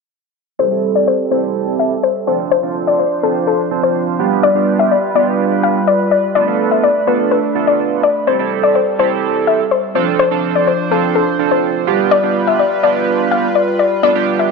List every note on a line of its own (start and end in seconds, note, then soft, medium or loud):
0.59 2.26 G3 medium
0.59 0.67 C4 medium
0.59 2.26 C4 medium
0.59 0.67 E4 medium
0.59 0.67 G4 medium
0.59 2.26 A4 medium
0.59 0.67 A4 medium
0.59 0.81 C5 loud
0.71 1.11 C4 medium
0.71 1.11 E4 medium
0.71 1.11 G4 medium
0.71 1.12 A4 medium
0.95 1.06 D5 medium
1.07 1.29 C5 medium
1.31 1.95 C4 medium
1.31 1.95 E4 medium
1.31 1.96 G4 medium
1.31 1.96 A4 medium
1.31 1.42 C5 medium
1.79 1.90 E5 medium
2.03 2.14 C5 medium
2.27 4.17 F3 medium
2.27 2.56 C4 medium
2.27 2.56 D4 medium
2.27 4.17 D4 medium
2.27 2.56 F4 medium
2.27 2.56 A4 medium
2.27 4.17 C5 medium
2.27 2.38 C5 medium
2.51 2.73 C5 loud
2.63 3.03 C4 medium
2.63 3.03 D4 medium
2.63 3.03 F4 medium
2.63 3.04 A4 medium
2.87 2.98 D5 medium
2.99 3.21 C5 medium
3.23 3.55 C4 medium
3.23 3.55 D4 medium
3.23 3.55 F4 medium
3.23 3.34 A4 medium
3.23 3.55 C5 medium
3.47 3.58 A4 medium
3.71 4.19 C4 medium
3.71 4.18 D4 medium
3.71 4.18 F4 medium
3.71 4.19 C5 medium
3.83 3.94 C5 medium
4.19 6.33 G3 medium
4.19 4.48 B3 medium
4.19 4.48 D4 medium
4.19 4.48 F4 medium
4.19 6.33 F4 medium
4.19 4.48 G4 loud
4.19 8.23 B4 medium
4.43 4.65 D5 loud
4.55 4.95 B3 medium
4.55 4.95 D4 medium
4.55 4.95 F4 medium
4.55 4.96 G4 medium
4.79 4.90 E5 medium
4.91 5.13 D5 medium
5.15 5.79 B3 medium
5.15 5.79 D4 medium
5.15 5.80 F4 medium
5.15 5.80 G4 medium
5.15 5.26 D5 medium
5.63 5.74 F5 medium
5.87 5.98 D5 medium
6.11 6.22 D5 medium
6.35 8.25 A3 medium
6.35 6.43 B3 medium
6.35 6.43 D4 medium
6.35 8.25 D4 medium
6.35 6.43 F4 medium
6.35 6.43 A4 medium
6.35 6.57 D5 medium
6.47 6.87 B3 medium
6.47 6.87 D4 medium
6.47 6.87 F4 medium
6.47 6.88 A4 medium
6.71 6.82 E5 medium
6.83 7.05 D5 medium
7.07 7.39 B3 medium
7.07 7.39 D4 medium
7.07 7.39 F4 medium
7.07 7.40 A4 medium
7.07 7.18 B4 medium
7.31 7.42 B4 medium
7.55 8.03 B3 medium
7.55 8.03 D4 medium
7.55 8.04 F4 medium
7.55 8.04 A4 medium
7.67 7.78 D5 medium
8.03 8.14 D5 medium
8.27 9.94 G3 medium
8.27 8.35 C4 medium
8.27 9.94 C4 medium
8.27 8.35 E4 medium
8.27 8.35 G4 medium
8.27 9.94 A4 medium
8.27 8.35 A4 medium
8.27 8.49 C5 loud
8.39 8.79 C4 medium
8.39 8.79 E4 medium
8.39 8.79 G4 medium
8.39 8.80 A4 medium
8.63 8.74 D5 medium
8.75 8.97 C5 medium
8.99 9.63 C4 medium
8.99 9.63 E4 medium
8.99 9.64 G4 medium
8.99 9.64 A4 medium
8.99 9.10 C5 medium
9.47 9.58 E5 medium
9.71 9.82 C5 medium
9.95 11.85 F3 medium
9.95 10.24 C4 medium
9.95 10.24 D4 medium
9.95 11.85 D4 medium
9.95 10.24 F4 medium
9.95 10.24 A4 medium
9.95 11.85 C5 medium
9.95 10.06 C5 medium
10.19 10.41 C5 loud
10.31 10.71 C4 medium
10.31 10.71 D4 medium
10.31 10.71 F4 medium
10.31 10.71 A4 medium
10.55 10.66 D5 medium
10.67 10.89 C5 medium
10.91 11.23 C4 medium
10.91 11.23 D4 medium
10.91 11.23 F4 medium
10.91 11.02 A4 medium
10.91 11.23 A4 medium
11.15 11.26 A4 medium
11.39 11.87 C4 medium
11.39 11.86 D4 medium
11.39 11.86 F4 medium
11.39 11.87 A4 medium
11.51 11.62 C5 medium
11.87 14.52 G3 medium
11.87 12.16 B3 loud
11.87 12.16 D4 medium
11.87 12.16 F4 medium
11.87 14.52 F4 medium
11.87 12.16 G4 loud
11.87 14.52 B4 medium
12.11 12.33 D5 loud
12.23 12.63 B3 medium
12.23 12.63 D4 medium
12.23 12.63 F4 medium
12.23 12.64 G4 medium
12.47 12.58 E5 medium
12.59 12.81 D5 medium
12.83 13.47 B3 medium
12.83 13.47 D4 medium
12.83 13.48 F4 medium
12.83 13.48 G4 medium
12.83 12.94 D5 medium
13.31 13.42 F5 medium
13.55 13.66 D5 medium
13.79 13.90 D5 medium
14.03 14.11 B3 medium
14.03 14.11 D4 medium
14.03 14.11 F4 medium
14.03 14.11 A4 medium
14.03 14.25 D5 loud
14.15 14.52 B3 medium
14.15 14.52 D4 medium
14.15 14.52 F4 medium
14.15 14.52 G4 medium
14.39 14.50 E5 medium